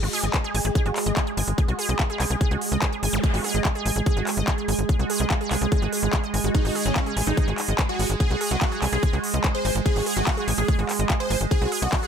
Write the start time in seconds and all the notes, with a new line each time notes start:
Already playing: G#3
0.03 G#1 F#4, open hi-hat
0.13 G#4, open hi-hat
0.24 G#1 D#5, closed hi-hat
0.34 kick, clap, closed hi-hat
0.44 G#4, closed hi-hat
0.55 A1 G#5, open hi-hat
0.65 A1 G#4, closed hi-hat
0.75 G#4, kick, closed hi-hat
0.86 G#1 F#4, closed hi-hat
0.96 clap, open hi-hat
1.06 G#1 D#5, closed hi-hat
1.17 G#4, kick, clap, closed hi-hat
1.27 G#4, closed hi-hat
1.37 G#1 G#5, open hi-hat
1.48 G#1, closed hi-hat
1.58 G#4, kick, closed hi-hat
1.68 C2 F#4, closed hi-hat
1.79 G#4, open hi-hat
1.89 C2 D#5, closed hi-hat
1.99 kick, clap, closed hi-hat
2.10 G#4, closed hi-hat
2.20 C2 G#5, clap, open hi-hat
2.30 C2 G#4, closed hi-hat
2.41 G#4, kick, closed hi-hat
2.51 C#2 F#4, closed hi-hat
2.61 open hi-hat
2.72 C#2 D#5, closed hi-hat
2.82 G#4, kick, clap, closed hi-hat
2.93 G#4, closed hi-hat
3.03 G#1 G#5, open hi-hat
3.13 G#1, closed hi-hat, zap
3.24 G#4, kick, closed hi-hat
3.34 G#1 F#4, open hi-hat
3.44 G#4, open hi-hat
3.55 G#1 D#5, closed hi-hat
3.65 kick, clap, closed hi-hat
3.75 G#4, closed hi-hat
3.86 A1 G#5, open hi-hat
3.96 A1 G#4, closed hi-hat
4.06 G#4, kick, closed hi-hat
4.17 G#1 F#4, closed hi-hat
4.27 clap, open hi-hat
4.37 G#1 D#5, closed hi-hat
4.48 G#4, kick, clap, closed hi-hat
4.58 G#4, closed hi-hat
4.68 G#1 G#5, open hi-hat
4.79 G#1, closed hi-hat
4.89 G#4, kick, closed hi-hat
4.99 C2 F#4, closed hi-hat
5.10 G#4, open hi-hat
5.20 C2 D#5, closed hi-hat
5.30 kick, clap, closed hi-hat
5.41 G#4, closed hi-hat
5.51 C2 G#5, clap, open hi-hat
5.61 C2 G#4, closed hi-hat
5.72 G#4, kick, closed hi-hat
5.82 G#1 F#4, closed hi-hat
5.93 G#4, open hi-hat
6.03 G#1 G#4, closed hi-hat
6.13 G#4, kick, clap, closed hi-hat
6.24 D#5, closed hi-hat
6.34 G#1 G#5, open hi-hat
6.44 G#1 F#4, closed hi-hat
6.55 D#4 G#4, kick, closed hi-hat
6.65 G#1 F#4, open hi-hat
6.75 G#4, open hi-hat
6.86 G#1 C#4 D#5, closed hi-hat
6.96 kick, clap, closed hi-hat
7.06 G#4, closed hi-hat
7.17 A1 G#5, open hi-hat
7.27 A1 D#4 G#4, closed hi-hat
7.37 G#4, kick, closed hi-hat
7.48 G#1 F#4, closed hi-hat
7.58 clap, open hi-hat
7.68 G#1 D#5, closed hi-hat
7.79 G#4, kick, clap, closed hi-hat
7.89 F#4 G#4, closed hi-hat
7.99 G#1 G#5, open hi-hat
8.10 G#1, closed hi-hat
8.20 G#4, kick, closed hi-hat
8.30 C2 F#4, closed hi-hat
8.41 G#4, open hi-hat
8.51 C2 F#4 D#5, closed hi-hat
8.62 kick, clap, closed hi-hat
8.72 G#4, closed hi-hat
8.82 C2 G#5, clap, open hi-hat
8.93 C2 G#4, closed hi-hat
9.03 G#4, kick, closed hi-hat
9.13 C#2 F#4, closed hi-hat
9.24 open hi-hat
9.34 C#2 D#5, closed hi-hat
9.44 G#4, kick, clap, closed hi-hat
9.55 G#4 C5, closed hi-hat
9.65 G#1 G#5, open hi-hat
9.75 G#1, closed hi-hat
9.86 G#4, kick, closed hi-hat
9.96 G#1 F#4, open hi-hat
10.06 G#4, open hi-hat
10.17 G#1 F#4 D#5, closed hi-hat
10.27 kick, clap, closed hi-hat
10.37 G#4, closed hi-hat
10.48 A1 G#5, open hi-hat
10.58 A1 G#4, closed hi-hat
10.68 G#4, kick, closed hi-hat
10.79 G#1 F#4, closed hi-hat
10.89 clap, open hi-hat
10.99 G#1 D#5, closed hi-hat
11.10 G#4, kick, clap, closed hi-hat
11.20 G#4 C5, closed hi-hat
11.30 G#1 G#5, open hi-hat
11.41 G#1, closed hi-hat
11.51 G#4, kick, closed hi-hat
11.62 C2 F#4, closed hi-hat
11.72 G#4, open hi-hat
11.82 C2 F#4 D#5, closed hi-hat
11.93 kick, clap, closed hi-hat
12.03 G#4, closed hi-hat